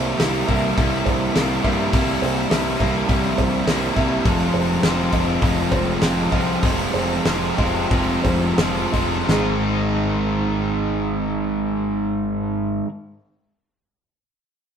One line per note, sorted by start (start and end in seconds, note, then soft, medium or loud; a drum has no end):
0.00 0.12 C2 loud
0.00 0.17 C3 loud
0.00 0.18 G3 loud
0.00 0.19 A#3 loud
0.00 0.19 E4 loud
0.00 0.48 C5 medium
0.18 0.42 C2 medium
0.18 0.47 C3 medium
0.18 0.48 G3 medium
0.18 0.48 A#3 medium
0.18 0.49 E4 medium
0.18 snare loud
0.18 open hi-hat loud
0.47 0.71 C2 medium
0.47 0.75 C3 medium
0.47 0.76 G3 loud
0.47 0.76 A#3 loud
0.47 0.77 E4 loud
0.47 1.06 E5 medium
0.47 kick medium
0.47 open hi-hat medium
0.76 1.00 C2 loud
0.76 1.34 C3 medium
0.76 1.34 G3 loud
0.76 1.35 A#3 medium
0.76 1.35 E4 loud
0.76 kick loud
0.76 open hi-hat loud
1.05 1.29 C2 medium
1.05 1.63 C3 medium
1.05 1.64 C5 medium
1.05 kick medium
1.05 open hi-hat medium
1.35 1.58 C2 loud
1.35 1.62 C3 medium
1.35 1.63 G3 medium
1.35 1.63 A#3 loud
1.35 1.63 E4 medium
1.35 snare loud
1.35 open hi-hat medium
1.63 1.87 G2 medium
1.63 1.91 C3 medium
1.63 1.91 G3 loud
1.63 1.92 A#3 loud
1.63 1.93 E4 loud
1.63 1.93 E5 medium
1.63 kick medium
1.63 open hi-hat medium
1.93 2.16 C2 loud
1.93 2.49 C3 loud
1.93 2.50 G3 loud
1.93 2.51 A#3 loud
1.93 2.51 E4 loud
1.93 kick loud
1.93 open hi-hat loud
2.22 2.45 C2 loud
2.22 2.80 C5 medium
2.22 open hi-hat medium
2.50 2.74 C2 medium
2.50 2.78 C3 medium
2.50 2.78 G3 medium
2.50 2.79 A#3 medium
2.50 2.80 E4 loud
2.50 snare loud
2.50 open hi-hat medium
2.79 3.03 C2 medium
2.79 3.07 C3 medium
2.79 3.07 G3 medium
2.79 3.07 A#3 medium
2.79 3.08 E4 loud
2.79 3.38 E5 medium
2.79 kick medium
2.79 open hi-hat medium
3.08 3.32 C2 medium
3.08 3.65 C3 loud
3.08 3.66 G3 loud
3.08 3.66 A#3 loud
3.08 3.66 E4 loud
3.08 kick loud
3.08 open hi-hat medium
3.38 3.61 C2 loud
3.38 3.96 C3 medium
3.38 3.96 C5 medium
3.38 kick medium
3.38 open hi-hat medium
3.66 3.90 C2 loud
3.66 3.94 C3 loud
3.66 3.95 G3 medium
3.66 3.95 A#3 loud
3.66 3.96 E4 loud
3.66 snare loud
3.66 open hi-hat medium
3.95 4.19 C2 medium
3.95 4.23 C3 loud
3.95 4.23 G3 loud
3.95 4.24 A#3 loud
3.95 4.24 E4 loud
3.95 4.25 E5 medium
3.95 kick medium
3.95 open hi-hat medium
4.25 4.48 F1 loud
4.25 4.82 F2 loud
4.25 4.82 C3 loud
4.25 4.83 F3 loud
4.25 4.84 G#3 loud
4.25 4.85 C4 loud
4.25 4.85 F4 loud
4.25 kick loud
4.25 open hi-hat medium
4.54 4.77 F1 loud
4.54 5.12 C5 medium
4.54 open hi-hat medium
4.83 5.06 F1 medium
4.83 5.12 F2 medium
4.83 5.12 C3 medium
4.83 5.13 F3 medium
4.83 5.13 G#3 loud
4.83 5.14 C4 loud
4.83 5.14 F4 loud
4.83 snare loud
4.83 open hi-hat medium
5.12 5.36 F1 loud
5.12 5.41 F2 medium
5.12 5.41 C3 medium
5.12 5.42 F3 loud
5.12 5.43 G#3 loud
5.12 5.43 C4 loud
5.12 5.43 F4 loud
5.12 5.72 D#5 medium
5.12 kick medium
5.12 open hi-hat medium
5.42 5.66 F1 loud
5.42 6.00 F2 loud
5.42 6.00 C3 loud
5.42 6.01 F3 medium
5.42 6.02 G#3 loud
5.42 6.02 C4 medium
5.42 6.02 F4 loud
5.42 kick loud
5.42 open hi-hat loud
5.71 5.95 F1 loud
5.71 6.31 F3 medium
5.71 6.32 C5 medium
5.71 kick medium
5.71 open hi-hat medium
6.01 6.25 F1 loud
6.01 6.30 F2 medium
6.01 6.31 C3 medium
6.01 6.32 F3 loud
6.01 6.33 G#3 loud
6.01 6.34 C4 loud
6.01 6.33 F4 loud
6.01 snare loud
6.01 open hi-hat medium
6.31 6.56 C2 loud
6.31 6.61 F2 medium
6.31 6.61 C3 loud
6.31 6.62 F3 loud
6.31 6.63 G#3 loud
6.31 6.63 C4 loud
6.31 6.63 F4 loud
6.31 6.63 D#5 medium
6.31 kick medium
6.31 open hi-hat medium
6.62 6.87 F1 loud
6.62 7.24 F2 loud
6.62 7.24 C3 loud
6.62 7.25 F3 loud
6.62 7.25 G#3 loud
6.62 7.26 C4 loud
6.62 7.26 F4 loud
6.62 kick loud
6.62 open hi-hat loud
6.94 7.19 F1 loud
6.94 7.58 C5 medium
6.94 open hi-hat medium
7.25 7.51 F1 medium
7.25 7.56 F2 medium
7.25 7.57 C3 medium
7.25 7.57 F3 medium
7.25 7.57 G#3 loud
7.25 7.58 C4 loud
7.25 7.58 F4 medium
7.25 snare loud
7.25 open hi-hat medium
7.58 7.84 F1 medium
7.58 7.89 F2 medium
7.58 7.90 C3 medium
7.58 7.91 F3 medium
7.58 7.91 G#3 loud
7.58 7.91 C4 loud
7.58 7.92 F4 medium
7.58 8.24 D#5 medium
7.58 kick medium
7.58 open hi-hat medium
7.90 8.17 F1 loud
7.90 8.57 F2 medium
7.90 8.58 C3 medium
7.90 8.58 F3 medium
7.90 8.59 G#3 loud
7.90 8.59 C4 medium
7.90 8.60 F4 loud
7.90 kick loud
7.90 open hi-hat loud
8.23 8.51 F1 loud
8.23 8.92 F3 medium
8.23 8.93 C5 medium
8.23 kick medium
8.23 open hi-hat medium
8.57 8.85 F1 medium
8.57 8.92 F2 medium
8.57 8.92 C3 medium
8.57 8.93 F3 loud
8.57 8.93 G#3 loud
8.57 8.94 C4 medium
8.57 8.94 F4 medium
8.57 snare loud
8.57 open hi-hat medium
8.92 9.21 F1 medium
8.92 9.27 F2 medium
8.92 9.27 C3 medium
8.92 9.27 F3 medium
8.92 9.28 G#3 loud
8.92 9.28 C4 loud
8.92 9.28 F4 loud
8.92 9.29 D#5 medium
8.92 kick medium
8.92 open hi-hat medium
9.27 12.80 G#1 medium
9.27 12.84 G#2 loud
9.27 12.86 D#3 medium
9.27 12.87 G#3 loud
9.27 12.88 C4 loud
9.27 9.65 G#4 medium
9.27 snare loud
9.32 12.89 D#4 loud
9.32 12.89 G#4 loud